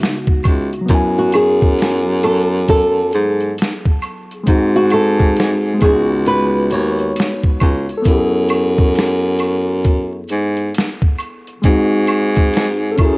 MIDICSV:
0, 0, Header, 1, 5, 480
1, 0, Start_track
1, 0, Tempo, 895522
1, 479, Time_signature, 4, 2, 24, 8
1, 7064, End_track
2, 0, Start_track
2, 0, Title_t, "Nylon-string guitar"
2, 0, Program_c, 0, 24
2, 0, Note_on_c, 0, 66, 72
2, 461, Note_off_c, 0, 66, 0
2, 635, Note_on_c, 0, 66, 75
2, 713, Note_off_c, 0, 66, 0
2, 724, Note_on_c, 0, 68, 79
2, 940, Note_off_c, 0, 68, 0
2, 1200, Note_on_c, 0, 69, 75
2, 1334, Note_off_c, 0, 69, 0
2, 1445, Note_on_c, 0, 69, 82
2, 1683, Note_off_c, 0, 69, 0
2, 1683, Note_on_c, 0, 68, 85
2, 1899, Note_off_c, 0, 68, 0
2, 2551, Note_on_c, 0, 66, 79
2, 2631, Note_off_c, 0, 66, 0
2, 2646, Note_on_c, 0, 69, 81
2, 2861, Note_off_c, 0, 69, 0
2, 3119, Note_on_c, 0, 68, 67
2, 3254, Note_off_c, 0, 68, 0
2, 3364, Note_on_c, 0, 71, 83
2, 3580, Note_off_c, 0, 71, 0
2, 3602, Note_on_c, 0, 73, 82
2, 3969, Note_off_c, 0, 73, 0
2, 7064, End_track
3, 0, Start_track
3, 0, Title_t, "Reed electric piano"
3, 0, Program_c, 1, 4
3, 0, Control_c, 1, 64, 127
3, 0, Note_on_c, 1, 49, 66
3, 0, Note_on_c, 1, 56, 61
3, 0, Note_on_c, 1, 59, 57
3, 0, Note_on_c, 1, 63, 54
3, 0, Note_on_c, 1, 66, 69
3, 435, Note_on_c, 1, 54, 62
3, 437, Note_off_c, 1, 49, 0
3, 447, Note_off_c, 1, 56, 0
3, 452, Note_off_c, 1, 59, 0
3, 458, Note_on_c, 1, 59, 58
3, 465, Note_off_c, 1, 63, 0
3, 473, Note_off_c, 1, 66, 0
3, 483, Note_on_c, 1, 64, 67
3, 486, Control_c, 1, 64, 0
3, 507, Note_on_c, 1, 80, 70
3, 595, Control_c, 1, 64, 127
3, 2355, Note_off_c, 1, 54, 0
3, 2367, Note_off_c, 1, 59, 0
3, 2377, Note_on_c, 1, 56, 66
3, 2379, Note_off_c, 1, 64, 0
3, 2390, Note_on_c, 1, 60, 58
3, 2392, Note_off_c, 1, 80, 0
3, 2401, Note_on_c, 1, 63, 62
3, 2406, Control_c, 1, 64, 0
3, 2414, Note_on_c, 1, 66, 72
3, 2512, Control_c, 1, 64, 127
3, 3070, Note_off_c, 1, 56, 0
3, 3076, Note_on_c, 1, 56, 69
3, 3100, Note_on_c, 1, 59, 62
3, 3115, Note_off_c, 1, 60, 0
3, 3119, Note_off_c, 1, 63, 0
3, 3125, Control_c, 1, 64, 0
3, 3125, Note_on_c, 1, 63, 57
3, 3126, Note_off_c, 1, 66, 0
3, 3147, Note_on_c, 1, 65, 60
3, 3177, Note_off_c, 1, 65, 0
3, 3183, Note_on_c, 1, 66, 74
3, 3217, Control_c, 1, 64, 127
3, 4274, Note_on_c, 1, 69, 63
3, 4276, Note_off_c, 1, 56, 0
3, 4288, Note_off_c, 1, 59, 0
3, 4298, Note_on_c, 1, 59, 62
3, 4301, Note_off_c, 1, 63, 0
3, 4322, Note_on_c, 1, 64, 61
3, 4326, Control_c, 1, 64, 0
3, 4329, Note_off_c, 1, 66, 0
3, 4347, Note_on_c, 1, 67, 53
3, 4376, Note_off_c, 1, 67, 0
3, 4381, Note_on_c, 1, 68, 64
3, 4421, Control_c, 1, 64, 127
3, 6195, Note_off_c, 1, 69, 0
3, 6207, Note_off_c, 1, 59, 0
3, 6219, Note_off_c, 1, 64, 0
3, 6227, Note_on_c, 1, 56, 63
3, 6239, Note_on_c, 1, 60, 60
3, 6247, Control_c, 1, 64, 0
3, 6249, Note_off_c, 1, 68, 0
3, 6251, Note_on_c, 1, 63, 55
3, 6264, Note_on_c, 1, 66, 74
3, 6354, Control_c, 1, 64, 127
3, 6923, Note_on_c, 1, 69, 58
3, 6947, Note_on_c, 1, 61, 69
3, 6953, Note_off_c, 1, 56, 0
3, 6959, Note_off_c, 1, 60, 0
3, 6965, Note_off_c, 1, 63, 0
3, 6965, Control_c, 1, 64, 0
3, 6971, Note_off_c, 1, 66, 0
3, 6971, Note_on_c, 1, 64, 64
3, 6995, Note_on_c, 1, 68, 76
3, 7047, Control_c, 1, 64, 127
3, 7064, Note_off_c, 1, 61, 0
3, 7064, Note_off_c, 1, 64, 0
3, 7064, Note_off_c, 1, 68, 0
3, 7064, Note_off_c, 1, 69, 0
3, 7064, End_track
4, 0, Start_track
4, 0, Title_t, "Baritone saxophone"
4, 0, Program_c, 2, 67
4, 246, Note_on_c, 2, 37, 81
4, 381, Note_off_c, 2, 37, 0
4, 483, Note_on_c, 2, 42, 117
4, 1659, Note_off_c, 2, 42, 0
4, 1686, Note_on_c, 2, 44, 93
4, 1905, Note_off_c, 2, 44, 0
4, 2400, Note_on_c, 2, 44, 108
4, 3098, Note_off_c, 2, 44, 0
4, 3122, Note_on_c, 2, 37, 96
4, 3579, Note_off_c, 2, 37, 0
4, 3605, Note_on_c, 2, 39, 93
4, 3825, Note_off_c, 2, 39, 0
4, 4084, Note_on_c, 2, 37, 90
4, 4221, Note_off_c, 2, 37, 0
4, 4321, Note_on_c, 2, 42, 111
4, 5498, Note_off_c, 2, 42, 0
4, 5525, Note_on_c, 2, 44, 98
4, 5745, Note_off_c, 2, 44, 0
4, 6243, Note_on_c, 2, 44, 123
4, 6940, Note_off_c, 2, 44, 0
4, 6961, Note_on_c, 2, 42, 98
4, 7064, Note_off_c, 2, 42, 0
4, 7064, End_track
5, 0, Start_track
5, 0, Title_t, "Drums"
5, 7, Note_on_c, 9, 82, 51
5, 17, Note_on_c, 9, 38, 122
5, 60, Note_off_c, 9, 82, 0
5, 71, Note_off_c, 9, 38, 0
5, 146, Note_on_c, 9, 36, 88
5, 199, Note_off_c, 9, 36, 0
5, 235, Note_on_c, 9, 76, 64
5, 235, Note_on_c, 9, 82, 52
5, 241, Note_on_c, 9, 42, 58
5, 242, Note_on_c, 9, 36, 97
5, 289, Note_off_c, 9, 76, 0
5, 289, Note_off_c, 9, 82, 0
5, 295, Note_off_c, 9, 42, 0
5, 296, Note_off_c, 9, 36, 0
5, 391, Note_on_c, 9, 42, 35
5, 444, Note_off_c, 9, 42, 0
5, 473, Note_on_c, 9, 82, 70
5, 474, Note_on_c, 9, 42, 90
5, 478, Note_on_c, 9, 36, 110
5, 527, Note_off_c, 9, 82, 0
5, 528, Note_off_c, 9, 42, 0
5, 532, Note_off_c, 9, 36, 0
5, 709, Note_on_c, 9, 42, 65
5, 717, Note_on_c, 9, 76, 76
5, 717, Note_on_c, 9, 82, 57
5, 763, Note_off_c, 9, 42, 0
5, 771, Note_off_c, 9, 76, 0
5, 771, Note_off_c, 9, 82, 0
5, 868, Note_on_c, 9, 36, 84
5, 922, Note_off_c, 9, 36, 0
5, 958, Note_on_c, 9, 42, 75
5, 963, Note_on_c, 9, 82, 73
5, 976, Note_on_c, 9, 38, 120
5, 1011, Note_off_c, 9, 42, 0
5, 1017, Note_off_c, 9, 82, 0
5, 1029, Note_off_c, 9, 38, 0
5, 1196, Note_on_c, 9, 42, 68
5, 1199, Note_on_c, 9, 76, 60
5, 1199, Note_on_c, 9, 82, 45
5, 1250, Note_off_c, 9, 42, 0
5, 1253, Note_off_c, 9, 76, 0
5, 1253, Note_off_c, 9, 82, 0
5, 1434, Note_on_c, 9, 82, 59
5, 1438, Note_on_c, 9, 42, 74
5, 1440, Note_on_c, 9, 36, 86
5, 1488, Note_off_c, 9, 82, 0
5, 1492, Note_off_c, 9, 42, 0
5, 1493, Note_off_c, 9, 36, 0
5, 1672, Note_on_c, 9, 82, 51
5, 1677, Note_on_c, 9, 42, 60
5, 1725, Note_off_c, 9, 82, 0
5, 1730, Note_off_c, 9, 42, 0
5, 1824, Note_on_c, 9, 42, 34
5, 1878, Note_off_c, 9, 42, 0
5, 1920, Note_on_c, 9, 42, 78
5, 1926, Note_on_c, 9, 82, 55
5, 1940, Note_on_c, 9, 38, 116
5, 1973, Note_off_c, 9, 42, 0
5, 1980, Note_off_c, 9, 82, 0
5, 1993, Note_off_c, 9, 38, 0
5, 2066, Note_on_c, 9, 36, 86
5, 2119, Note_off_c, 9, 36, 0
5, 2155, Note_on_c, 9, 76, 68
5, 2155, Note_on_c, 9, 82, 50
5, 2162, Note_on_c, 9, 42, 58
5, 2209, Note_off_c, 9, 76, 0
5, 2209, Note_off_c, 9, 82, 0
5, 2216, Note_off_c, 9, 42, 0
5, 2311, Note_on_c, 9, 42, 37
5, 2365, Note_off_c, 9, 42, 0
5, 2392, Note_on_c, 9, 82, 72
5, 2394, Note_on_c, 9, 42, 87
5, 2398, Note_on_c, 9, 36, 111
5, 2446, Note_off_c, 9, 82, 0
5, 2448, Note_off_c, 9, 42, 0
5, 2451, Note_off_c, 9, 36, 0
5, 2628, Note_on_c, 9, 42, 66
5, 2635, Note_on_c, 9, 76, 75
5, 2635, Note_on_c, 9, 82, 57
5, 2682, Note_off_c, 9, 42, 0
5, 2689, Note_off_c, 9, 76, 0
5, 2689, Note_off_c, 9, 82, 0
5, 2787, Note_on_c, 9, 36, 85
5, 2840, Note_off_c, 9, 36, 0
5, 2875, Note_on_c, 9, 42, 79
5, 2879, Note_on_c, 9, 82, 71
5, 2893, Note_on_c, 9, 38, 119
5, 2929, Note_off_c, 9, 42, 0
5, 2933, Note_off_c, 9, 82, 0
5, 2947, Note_off_c, 9, 38, 0
5, 3113, Note_on_c, 9, 42, 65
5, 3118, Note_on_c, 9, 36, 104
5, 3118, Note_on_c, 9, 76, 57
5, 3118, Note_on_c, 9, 82, 45
5, 3166, Note_off_c, 9, 42, 0
5, 3171, Note_off_c, 9, 36, 0
5, 3172, Note_off_c, 9, 76, 0
5, 3172, Note_off_c, 9, 82, 0
5, 3352, Note_on_c, 9, 82, 62
5, 3357, Note_on_c, 9, 42, 77
5, 3406, Note_off_c, 9, 82, 0
5, 3411, Note_off_c, 9, 42, 0
5, 3590, Note_on_c, 9, 82, 47
5, 3595, Note_on_c, 9, 42, 57
5, 3643, Note_off_c, 9, 82, 0
5, 3649, Note_off_c, 9, 42, 0
5, 3745, Note_on_c, 9, 42, 32
5, 3799, Note_off_c, 9, 42, 0
5, 3838, Note_on_c, 9, 42, 92
5, 3847, Note_on_c, 9, 82, 54
5, 3858, Note_on_c, 9, 38, 118
5, 3891, Note_off_c, 9, 42, 0
5, 3901, Note_off_c, 9, 82, 0
5, 3912, Note_off_c, 9, 38, 0
5, 3985, Note_on_c, 9, 36, 87
5, 4039, Note_off_c, 9, 36, 0
5, 4075, Note_on_c, 9, 76, 69
5, 4075, Note_on_c, 9, 82, 49
5, 4081, Note_on_c, 9, 36, 92
5, 4082, Note_on_c, 9, 42, 58
5, 4128, Note_off_c, 9, 76, 0
5, 4128, Note_off_c, 9, 82, 0
5, 4135, Note_off_c, 9, 36, 0
5, 4136, Note_off_c, 9, 42, 0
5, 4230, Note_on_c, 9, 42, 34
5, 4284, Note_off_c, 9, 42, 0
5, 4310, Note_on_c, 9, 82, 72
5, 4316, Note_on_c, 9, 42, 89
5, 4318, Note_on_c, 9, 36, 100
5, 4363, Note_off_c, 9, 82, 0
5, 4370, Note_off_c, 9, 42, 0
5, 4371, Note_off_c, 9, 36, 0
5, 4550, Note_on_c, 9, 42, 65
5, 4556, Note_on_c, 9, 76, 75
5, 4556, Note_on_c, 9, 82, 52
5, 4604, Note_off_c, 9, 42, 0
5, 4610, Note_off_c, 9, 76, 0
5, 4610, Note_off_c, 9, 82, 0
5, 4708, Note_on_c, 9, 36, 95
5, 4762, Note_off_c, 9, 36, 0
5, 4798, Note_on_c, 9, 42, 77
5, 4799, Note_on_c, 9, 82, 74
5, 4816, Note_on_c, 9, 38, 112
5, 4852, Note_off_c, 9, 42, 0
5, 4853, Note_off_c, 9, 82, 0
5, 4870, Note_off_c, 9, 38, 0
5, 5032, Note_on_c, 9, 42, 68
5, 5038, Note_on_c, 9, 76, 59
5, 5038, Note_on_c, 9, 82, 46
5, 5086, Note_off_c, 9, 42, 0
5, 5091, Note_off_c, 9, 76, 0
5, 5091, Note_off_c, 9, 82, 0
5, 5274, Note_on_c, 9, 82, 66
5, 5277, Note_on_c, 9, 42, 72
5, 5279, Note_on_c, 9, 36, 89
5, 5327, Note_off_c, 9, 82, 0
5, 5331, Note_off_c, 9, 42, 0
5, 5333, Note_off_c, 9, 36, 0
5, 5512, Note_on_c, 9, 82, 49
5, 5518, Note_on_c, 9, 42, 61
5, 5565, Note_off_c, 9, 82, 0
5, 5571, Note_off_c, 9, 42, 0
5, 5665, Note_on_c, 9, 42, 36
5, 5718, Note_off_c, 9, 42, 0
5, 5759, Note_on_c, 9, 42, 86
5, 5766, Note_on_c, 9, 82, 55
5, 5780, Note_on_c, 9, 38, 112
5, 5813, Note_off_c, 9, 42, 0
5, 5820, Note_off_c, 9, 82, 0
5, 5833, Note_off_c, 9, 38, 0
5, 5906, Note_on_c, 9, 36, 92
5, 5959, Note_off_c, 9, 36, 0
5, 5995, Note_on_c, 9, 76, 69
5, 5995, Note_on_c, 9, 82, 52
5, 6002, Note_on_c, 9, 42, 57
5, 6048, Note_off_c, 9, 76, 0
5, 6048, Note_off_c, 9, 82, 0
5, 6056, Note_off_c, 9, 42, 0
5, 6149, Note_on_c, 9, 42, 35
5, 6203, Note_off_c, 9, 42, 0
5, 6233, Note_on_c, 9, 82, 69
5, 6237, Note_on_c, 9, 42, 88
5, 6239, Note_on_c, 9, 36, 110
5, 6286, Note_off_c, 9, 82, 0
5, 6291, Note_off_c, 9, 42, 0
5, 6292, Note_off_c, 9, 36, 0
5, 6471, Note_on_c, 9, 42, 64
5, 6476, Note_on_c, 9, 76, 81
5, 6476, Note_on_c, 9, 82, 58
5, 6524, Note_off_c, 9, 42, 0
5, 6530, Note_off_c, 9, 76, 0
5, 6530, Note_off_c, 9, 82, 0
5, 6623, Note_on_c, 9, 42, 36
5, 6629, Note_on_c, 9, 36, 89
5, 6677, Note_off_c, 9, 42, 0
5, 6683, Note_off_c, 9, 36, 0
5, 6719, Note_on_c, 9, 42, 72
5, 6719, Note_on_c, 9, 82, 69
5, 6737, Note_on_c, 9, 38, 117
5, 6772, Note_off_c, 9, 42, 0
5, 6773, Note_off_c, 9, 82, 0
5, 6790, Note_off_c, 9, 38, 0
5, 6954, Note_on_c, 9, 42, 67
5, 6959, Note_on_c, 9, 36, 103
5, 6960, Note_on_c, 9, 76, 67
5, 6960, Note_on_c, 9, 82, 44
5, 7008, Note_off_c, 9, 42, 0
5, 7013, Note_off_c, 9, 36, 0
5, 7014, Note_off_c, 9, 76, 0
5, 7014, Note_off_c, 9, 82, 0
5, 7064, End_track
0, 0, End_of_file